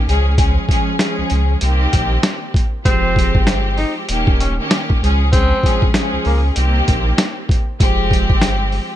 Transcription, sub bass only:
0.08 0.58 C#2 loud
1.19 1.23 C#2 soft
1.31 1.56 C#2 medium
1.62 1.87 C2 loud
1.94 2.18 A#1 loud
2.86 3.37 F1 loud
3.35 3.85 G1 medium
4.09 4.60 D#1 loud
5.02 5.53 C#2 loud
6.13 6.18 C#2 medium
6.26 6.51 C#2 medium
6.57 6.82 C2 loud
6.88 7.13 A#1 loud
7.80 8.31 F1 loud
8.30 8.80 G1 medium

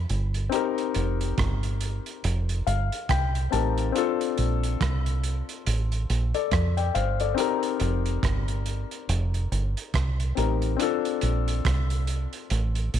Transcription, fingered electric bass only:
0.10 0.47 G1 medium
0.96 1.33 F1 medium
1.38 1.98 G1 medium
2.24 2.62 F1 medium
2.67 2.89 G1 medium
3.10 3.47 C2 medium
3.53 3.90 A1 medium
4.38 4.76 A#1 medium
4.81 5.41 C2 medium
5.67 6.04 A1 medium
6.10 6.32 A#1 medium
6.52 6.90 F2 medium
6.95 7.33 G1 medium
7.81 8.18 F1 medium
8.23 8.83 G1 medium
9.09 9.46 F1 loud
9.52 9.74 G1 medium
9.94 10.32 C2 medium
10.37 10.75 A1 loud
11.23 11.60 A#1 medium
11.65 12.25 C2 medium
12.51 12.89 A1 loud
12.94 13.00 A#1 medium

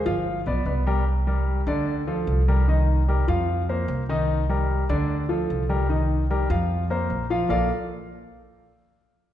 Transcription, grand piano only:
0.06 0.39 F3 medium
0.06 0.39 F4 medium
0.06 0.39 F5 medium
0.47 0.63 B3 medium
0.47 0.63 B4 medium
0.47 0.63 D5 medium
0.66 0.83 B3 medium
0.66 0.83 B4 medium
0.66 0.83 D5 medium
0.86 1.03 G3 medium
0.86 1.03 G4 medium
0.86 1.03 A#4 medium
1.27 1.60 G3 medium
1.27 1.60 G4 medium
1.27 1.60 A#4 medium
1.67 2.00 D3 medium
1.67 2.00 D4 medium
1.67 2.00 D5 medium
2.07 2.40 F3 medium
2.07 2.40 F4 medium
2.07 2.41 A4 medium
2.48 2.64 G3 medium
2.48 2.64 G4 medium
2.48 2.64 A#4 medium
2.68 3.01 D#3 medium
2.68 3.01 D#4 medium
2.68 3.01 D#5 medium
3.08 3.24 G3 medium
3.08 3.25 G4 medium
3.08 3.25 A#4 medium
3.28 3.61 F3 medium
3.28 3.61 F4 medium
3.28 3.61 F5 medium
3.69 4.02 A#3 medium
3.69 4.02 A#4 medium
3.69 4.02 C5 medium
4.09 4.42 D#3 medium
4.09 4.42 D#4 medium
4.09 4.42 D#5 medium
4.49 4.82 G3 medium
4.49 4.82 G4 medium
4.49 4.82 A#4 medium
4.89 5.22 D3 medium
4.89 5.22 D4 medium
4.89 5.22 D5 medium
5.29 5.62 F3 medium
5.29 5.62 F4 medium
5.29 5.62 A4 medium
5.69 5.86 G3 medium
5.69 5.86 G4 medium
5.69 5.86 A#4 medium
5.89 6.22 D#3 medium
5.89 6.22 D#4 medium
5.89 6.23 D#5 medium
6.30 6.46 G3 medium
6.30 6.47 G4 medium
6.30 6.47 A#4 medium
6.50 6.83 F3 medium
6.50 6.83 F4 medium
6.50 6.83 F5 medium
6.90 7.23 A#3 medium
6.90 7.23 A#4 medium
6.90 7.24 C5 medium
7.30 7.47 F3 medium
7.30 7.47 F4 medium
7.30 7.47 F5 medium
7.49 7.68 A#3 medium
7.49 7.69 F4 medium
7.49 7.69 A4 medium
7.49 7.69 A#4 medium
7.49 7.69 D5 medium
7.49 7.69 F5 medium

